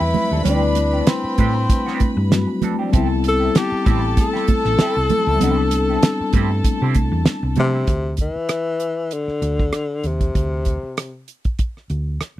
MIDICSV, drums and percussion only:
0, 0, Header, 1, 2, 480
1, 0, Start_track
1, 0, Tempo, 618557
1, 359, Time_signature, 4, 2, 24, 8
1, 9619, End_track
2, 0, Start_track
2, 0, Title_t, "Drums"
2, 105, Note_on_c, 9, 46, 40
2, 112, Note_on_c, 9, 62, 30
2, 112, Note_on_c, 9, 63, 67
2, 112, Note_on_c, 9, 64, 69
2, 183, Note_off_c, 9, 46, 0
2, 190, Note_off_c, 9, 62, 0
2, 190, Note_off_c, 9, 63, 0
2, 190, Note_off_c, 9, 64, 0
2, 348, Note_on_c, 9, 64, 63
2, 352, Note_on_c, 9, 42, 92
2, 425, Note_off_c, 9, 64, 0
2, 429, Note_off_c, 9, 42, 0
2, 583, Note_on_c, 9, 42, 75
2, 592, Note_on_c, 9, 62, 35
2, 661, Note_off_c, 9, 42, 0
2, 669, Note_off_c, 9, 62, 0
2, 828, Note_on_c, 9, 42, 106
2, 832, Note_on_c, 9, 38, 112
2, 838, Note_on_c, 9, 62, 30
2, 906, Note_off_c, 9, 42, 0
2, 910, Note_off_c, 9, 38, 0
2, 916, Note_off_c, 9, 62, 0
2, 1069, Note_on_c, 9, 42, 69
2, 1074, Note_on_c, 9, 36, 96
2, 1074, Note_on_c, 9, 62, 29
2, 1074, Note_on_c, 9, 63, 59
2, 1147, Note_off_c, 9, 42, 0
2, 1151, Note_off_c, 9, 36, 0
2, 1151, Note_off_c, 9, 62, 0
2, 1151, Note_off_c, 9, 63, 0
2, 1311, Note_on_c, 9, 63, 45
2, 1316, Note_on_c, 9, 36, 105
2, 1317, Note_on_c, 9, 42, 95
2, 1389, Note_off_c, 9, 63, 0
2, 1393, Note_off_c, 9, 36, 0
2, 1395, Note_off_c, 9, 42, 0
2, 1455, Note_on_c, 9, 38, 31
2, 1533, Note_off_c, 9, 38, 0
2, 1551, Note_on_c, 9, 42, 62
2, 1553, Note_on_c, 9, 63, 59
2, 1558, Note_on_c, 9, 36, 79
2, 1629, Note_off_c, 9, 42, 0
2, 1630, Note_off_c, 9, 63, 0
2, 1635, Note_off_c, 9, 36, 0
2, 1794, Note_on_c, 9, 62, 36
2, 1798, Note_on_c, 9, 38, 99
2, 1802, Note_on_c, 9, 42, 87
2, 1871, Note_off_c, 9, 62, 0
2, 1876, Note_off_c, 9, 38, 0
2, 1879, Note_off_c, 9, 42, 0
2, 2031, Note_on_c, 9, 62, 31
2, 2031, Note_on_c, 9, 63, 69
2, 2031, Note_on_c, 9, 64, 68
2, 2035, Note_on_c, 9, 42, 57
2, 2108, Note_off_c, 9, 62, 0
2, 2108, Note_off_c, 9, 63, 0
2, 2108, Note_off_c, 9, 64, 0
2, 2113, Note_off_c, 9, 42, 0
2, 2273, Note_on_c, 9, 64, 57
2, 2276, Note_on_c, 9, 42, 81
2, 2278, Note_on_c, 9, 36, 114
2, 2351, Note_off_c, 9, 64, 0
2, 2353, Note_off_c, 9, 42, 0
2, 2356, Note_off_c, 9, 36, 0
2, 2514, Note_on_c, 9, 42, 79
2, 2591, Note_off_c, 9, 42, 0
2, 2756, Note_on_c, 9, 42, 99
2, 2760, Note_on_c, 9, 38, 111
2, 2833, Note_off_c, 9, 42, 0
2, 2838, Note_off_c, 9, 38, 0
2, 2997, Note_on_c, 9, 42, 76
2, 2998, Note_on_c, 9, 36, 92
2, 2999, Note_on_c, 9, 63, 65
2, 3074, Note_off_c, 9, 42, 0
2, 3076, Note_off_c, 9, 36, 0
2, 3077, Note_off_c, 9, 63, 0
2, 3236, Note_on_c, 9, 42, 86
2, 3238, Note_on_c, 9, 36, 97
2, 3239, Note_on_c, 9, 62, 25
2, 3239, Note_on_c, 9, 63, 43
2, 3314, Note_off_c, 9, 42, 0
2, 3315, Note_off_c, 9, 36, 0
2, 3316, Note_off_c, 9, 62, 0
2, 3316, Note_off_c, 9, 63, 0
2, 3376, Note_on_c, 9, 38, 28
2, 3454, Note_off_c, 9, 38, 0
2, 3474, Note_on_c, 9, 42, 58
2, 3480, Note_on_c, 9, 36, 85
2, 3481, Note_on_c, 9, 62, 29
2, 3481, Note_on_c, 9, 63, 70
2, 3551, Note_off_c, 9, 42, 0
2, 3558, Note_off_c, 9, 36, 0
2, 3558, Note_off_c, 9, 62, 0
2, 3558, Note_off_c, 9, 63, 0
2, 3606, Note_on_c, 9, 38, 35
2, 3684, Note_off_c, 9, 38, 0
2, 3715, Note_on_c, 9, 38, 98
2, 3718, Note_on_c, 9, 42, 87
2, 3722, Note_on_c, 9, 62, 32
2, 3792, Note_off_c, 9, 38, 0
2, 3796, Note_off_c, 9, 42, 0
2, 3799, Note_off_c, 9, 62, 0
2, 3954, Note_on_c, 9, 42, 63
2, 3960, Note_on_c, 9, 62, 29
2, 3960, Note_on_c, 9, 63, 71
2, 3960, Note_on_c, 9, 64, 69
2, 4032, Note_off_c, 9, 42, 0
2, 4038, Note_off_c, 9, 62, 0
2, 4038, Note_off_c, 9, 63, 0
2, 4038, Note_off_c, 9, 64, 0
2, 4194, Note_on_c, 9, 62, 31
2, 4194, Note_on_c, 9, 64, 67
2, 4197, Note_on_c, 9, 42, 93
2, 4271, Note_off_c, 9, 62, 0
2, 4271, Note_off_c, 9, 64, 0
2, 4275, Note_off_c, 9, 42, 0
2, 4431, Note_on_c, 9, 42, 78
2, 4438, Note_on_c, 9, 62, 36
2, 4508, Note_off_c, 9, 42, 0
2, 4516, Note_off_c, 9, 62, 0
2, 4676, Note_on_c, 9, 42, 92
2, 4680, Note_on_c, 9, 38, 122
2, 4687, Note_on_c, 9, 62, 28
2, 4754, Note_off_c, 9, 42, 0
2, 4758, Note_off_c, 9, 38, 0
2, 4765, Note_off_c, 9, 62, 0
2, 4910, Note_on_c, 9, 42, 78
2, 4916, Note_on_c, 9, 36, 100
2, 4918, Note_on_c, 9, 62, 32
2, 4918, Note_on_c, 9, 63, 72
2, 4987, Note_off_c, 9, 42, 0
2, 4993, Note_off_c, 9, 36, 0
2, 4996, Note_off_c, 9, 62, 0
2, 4996, Note_off_c, 9, 63, 0
2, 5156, Note_on_c, 9, 36, 86
2, 5156, Note_on_c, 9, 42, 94
2, 5160, Note_on_c, 9, 63, 44
2, 5233, Note_off_c, 9, 36, 0
2, 5234, Note_off_c, 9, 42, 0
2, 5238, Note_off_c, 9, 63, 0
2, 5389, Note_on_c, 9, 42, 65
2, 5396, Note_on_c, 9, 63, 64
2, 5397, Note_on_c, 9, 36, 78
2, 5467, Note_off_c, 9, 42, 0
2, 5474, Note_off_c, 9, 63, 0
2, 5475, Note_off_c, 9, 36, 0
2, 5630, Note_on_c, 9, 38, 102
2, 5634, Note_on_c, 9, 42, 86
2, 5708, Note_off_c, 9, 38, 0
2, 5711, Note_off_c, 9, 42, 0
2, 5863, Note_on_c, 9, 42, 56
2, 5879, Note_on_c, 9, 62, 31
2, 5879, Note_on_c, 9, 63, 74
2, 5879, Note_on_c, 9, 64, 71
2, 5941, Note_off_c, 9, 42, 0
2, 5956, Note_off_c, 9, 62, 0
2, 5956, Note_off_c, 9, 63, 0
2, 5956, Note_off_c, 9, 64, 0
2, 6109, Note_on_c, 9, 42, 68
2, 6113, Note_on_c, 9, 36, 97
2, 6186, Note_off_c, 9, 42, 0
2, 6190, Note_off_c, 9, 36, 0
2, 6340, Note_on_c, 9, 42, 67
2, 6351, Note_on_c, 9, 36, 61
2, 6417, Note_off_c, 9, 42, 0
2, 6428, Note_off_c, 9, 36, 0
2, 6586, Note_on_c, 9, 42, 85
2, 6590, Note_on_c, 9, 37, 98
2, 6664, Note_off_c, 9, 42, 0
2, 6668, Note_off_c, 9, 37, 0
2, 6827, Note_on_c, 9, 42, 67
2, 6905, Note_off_c, 9, 42, 0
2, 7068, Note_on_c, 9, 42, 71
2, 7146, Note_off_c, 9, 42, 0
2, 7204, Note_on_c, 9, 37, 25
2, 7281, Note_off_c, 9, 37, 0
2, 7311, Note_on_c, 9, 42, 54
2, 7389, Note_off_c, 9, 42, 0
2, 7445, Note_on_c, 9, 37, 28
2, 7446, Note_on_c, 9, 36, 76
2, 7522, Note_off_c, 9, 37, 0
2, 7523, Note_off_c, 9, 36, 0
2, 7548, Note_on_c, 9, 37, 96
2, 7551, Note_on_c, 9, 42, 64
2, 7625, Note_off_c, 9, 37, 0
2, 7629, Note_off_c, 9, 42, 0
2, 7787, Note_on_c, 9, 42, 50
2, 7865, Note_off_c, 9, 42, 0
2, 7920, Note_on_c, 9, 36, 72
2, 7921, Note_on_c, 9, 42, 37
2, 7998, Note_off_c, 9, 36, 0
2, 7998, Note_off_c, 9, 42, 0
2, 8033, Note_on_c, 9, 36, 91
2, 8034, Note_on_c, 9, 42, 70
2, 8111, Note_off_c, 9, 36, 0
2, 8112, Note_off_c, 9, 42, 0
2, 8265, Note_on_c, 9, 42, 58
2, 8274, Note_on_c, 9, 36, 62
2, 8342, Note_off_c, 9, 42, 0
2, 8351, Note_off_c, 9, 36, 0
2, 8514, Note_on_c, 9, 42, 86
2, 8519, Note_on_c, 9, 37, 94
2, 8592, Note_off_c, 9, 42, 0
2, 8596, Note_off_c, 9, 37, 0
2, 8752, Note_on_c, 9, 42, 57
2, 8830, Note_off_c, 9, 42, 0
2, 8882, Note_on_c, 9, 42, 35
2, 8887, Note_on_c, 9, 36, 78
2, 8959, Note_off_c, 9, 42, 0
2, 8964, Note_off_c, 9, 36, 0
2, 8991, Note_on_c, 9, 42, 85
2, 8994, Note_on_c, 9, 36, 80
2, 9069, Note_off_c, 9, 42, 0
2, 9072, Note_off_c, 9, 36, 0
2, 9134, Note_on_c, 9, 37, 27
2, 9212, Note_off_c, 9, 37, 0
2, 9232, Note_on_c, 9, 42, 46
2, 9310, Note_off_c, 9, 42, 0
2, 9472, Note_on_c, 9, 37, 77
2, 9475, Note_on_c, 9, 42, 63
2, 9549, Note_off_c, 9, 37, 0
2, 9553, Note_off_c, 9, 42, 0
2, 9619, End_track
0, 0, End_of_file